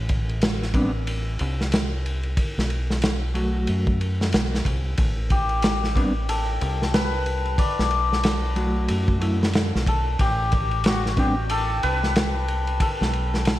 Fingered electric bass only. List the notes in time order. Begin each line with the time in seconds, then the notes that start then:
Already playing: A1
1.41 C2
2.58 B1
3.69 F#2
4.34 B1
4.66 C2
4.98 A1
6.62 C2
7.79 B1
8.90 F#2
9.75 B1
10.20 A1
11.84 C2
13.01 B1